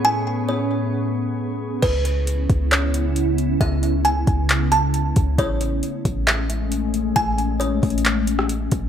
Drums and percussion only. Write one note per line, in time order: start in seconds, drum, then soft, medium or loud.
1.83 kick loud
1.83 closed hi-hat medium
1.83 crash medium
2.05 closed hi-hat medium
2.27 closed hi-hat medium
2.50 kick medium
2.50 closed hi-hat medium
2.71 clap loud
2.71 closed hi-hat medium
2.94 closed hi-hat medium
3.16 closed hi-hat medium
3.38 closed hi-hat medium
3.61 kick loud
3.61 closed hi-hat medium
3.83 closed hi-hat medium
4.05 closed hi-hat medium
4.27 kick medium
4.27 closed hi-hat medium
4.49 clap loud
4.49 closed hi-hat medium
4.72 closed hi-hat medium
4.94 closed hi-hat medium
5.16 kick medium
5.16 closed hi-hat medium
5.38 kick loud
5.38 closed hi-hat medium
5.61 closed hi-hat medium
5.83 closed hi-hat medium
6.05 kick medium
6.05 closed hi-hat medium
6.27 clap loud
6.27 closed hi-hat medium
6.50 closed hi-hat medium
6.72 closed hi-hat medium
6.94 closed hi-hat medium
7.16 kick loud
7.16 closed hi-hat medium
7.38 closed hi-hat medium
7.61 closed hi-hat medium
7.83 kick medium
7.83 closed hi-hat soft
7.83 open hi-hat soft
7.90 closed hi-hat medium
7.98 closed hi-hat medium
8.05 clap loud
8.05 closed hi-hat medium
8.27 closed hi-hat medium
8.39 cross-stick loud
8.49 closed hi-hat medium
8.71 kick loud
8.71 closed hi-hat medium